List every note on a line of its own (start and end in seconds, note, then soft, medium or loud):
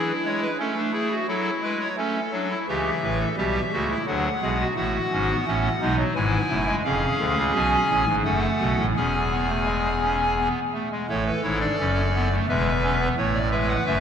0.00 0.12 E3 medium
0.00 0.50 E4 medium
0.00 0.12 G#4 medium
0.25 0.47 G#3 medium
0.25 0.40 C#5 medium
0.42 0.57 B4 medium
0.59 1.19 A3 medium
0.59 0.74 C#4 medium
0.59 0.81 A4 medium
0.76 0.92 D4 medium
0.93 1.09 E4 medium
0.93 1.15 G#4 loud
1.11 1.26 F#4 medium
1.28 1.50 F#3 medium
1.28 1.89 E4 medium
1.28 1.50 A4 loud
1.63 1.85 G#3 medium
1.63 1.78 B4 medium
1.80 1.96 C#5 medium
1.97 2.19 A3 medium
1.97 2.20 C#4 medium
1.97 2.58 A4 medium
2.32 2.55 F#3 medium
2.32 2.48 D4 medium
2.51 2.66 E4 medium
2.68 2.90 C#2 medium
2.68 2.90 C#3 medium
2.68 3.29 E3 medium
2.68 2.90 G4 medium
2.68 3.28 E5 medium
3.03 3.25 A1 medium
3.03 3.25 A2 medium
3.03 3.19 B4 medium
3.20 3.36 A4 medium
3.37 3.59 B1 medium
3.37 3.59 B2 medium
3.37 3.59 G3 medium
3.37 3.60 G4 medium
3.37 3.98 E5 medium
3.72 3.94 C#2 medium
3.72 3.94 C#3 medium
3.72 3.94 A3 medium
3.72 3.88 F#4 medium
3.90 4.05 E4 medium
4.07 4.29 D2 medium
4.07 4.29 D3 medium
4.07 4.29 F#3 medium
4.07 4.29 D4 medium
4.07 4.67 F#5 medium
4.42 4.64 B1 medium
4.42 4.64 B2 medium
4.42 4.64 G#3 medium
4.42 4.57 G#4 medium
4.61 4.74 F#4 medium
4.76 4.98 A1 medium
4.76 4.98 A2 medium
4.76 4.98 A3 medium
4.76 5.36 F#4 medium
4.76 5.96 F#5 medium
5.12 5.34 G#1 medium
5.12 5.34 G#2 medium
5.12 5.27 C#4 medium
5.30 5.45 B3 medium
5.47 5.69 A1 medium
5.47 5.69 A2 medium
5.47 5.69 A3 medium
5.47 5.69 C#4 medium
5.81 6.04 B1 medium
5.81 6.03 B2 medium
5.81 5.97 G#3 medium
5.81 6.03 D#4 medium
5.98 6.14 F#3 medium
6.15 6.37 G#1 medium
6.15 6.37 G#2 medium
6.15 6.37 E3 medium
6.15 6.75 E4 medium
6.15 6.75 G#5 medium
6.50 6.72 F#1 medium
6.50 6.72 F#2 medium
6.50 6.66 A3 medium
6.67 6.82 G#3 medium
6.84 7.06 F1 medium
6.84 7.06 F2 medium
6.84 8.05 C#4 medium
6.84 8.05 G#4 medium
6.84 7.45 F5 medium
7.20 7.35 D2 loud
7.20 7.35 D3 medium
7.37 7.52 C#2 loud
7.37 7.52 C#3 medium
7.54 7.77 B1 loud
7.54 7.76 B2 loud
7.54 8.15 G#5 medium
7.90 8.05 A1 medium
7.90 8.05 A2 medium
8.07 8.22 G#1 medium
8.07 8.23 G#2 medium
8.25 8.47 F#1 medium
8.25 8.47 F#2 medium
8.25 8.86 A3 medium
8.25 8.86 A4 medium
8.25 8.86 F#5 medium
8.60 8.76 B1 medium
8.60 8.76 B2 medium
8.78 8.93 A1 medium
8.78 8.93 A2 medium
8.96 10.48 E1 medium
8.96 10.48 E2 medium
8.96 9.18 C#4 medium
8.96 10.48 G#4 medium
8.96 10.48 G#5 medium
9.32 9.47 B3 medium
9.49 9.64 A3 medium
9.65 9.88 G#3 medium
10.02 10.24 C#4 medium
10.37 10.59 B3 medium
10.74 10.89 A3 medium
10.91 11.06 G#3 medium
11.09 11.31 A1 medium
11.09 11.31 A2 medium
11.09 11.30 A3 medium
11.09 12.29 A4 medium
11.09 11.24 C#5 medium
11.26 11.41 B4 medium
11.43 11.65 G#1 medium
11.43 11.65 G#2 medium
11.43 11.59 E4 medium
11.43 11.58 C#5 medium
11.60 11.75 D4 medium
11.60 12.35 D5 medium
11.80 12.39 F#1 medium
11.80 12.39 F#2 medium
11.80 12.01 C#4 medium
12.14 12.29 B3 medium
12.32 12.46 A3 medium
12.49 13.08 E1 medium
12.49 13.08 E2 medium
12.49 12.70 G#3 loud
12.49 13.08 B4 medium
12.49 13.08 E5 medium
12.84 12.98 C#4 medium
13.00 13.15 B3 loud
13.17 13.77 A1 medium
13.17 13.77 A2 medium
13.17 13.39 A3 medium
13.17 13.39 C#5 medium
13.34 13.49 D5 medium
13.51 13.73 G#3 loud
13.51 14.00 B4 medium
13.51 13.66 E5 medium
13.69 13.84 F#5 medium
13.86 14.00 F#1 medium
13.86 14.00 F#2 medium
13.86 14.00 A3 loud
13.86 14.00 E5 medium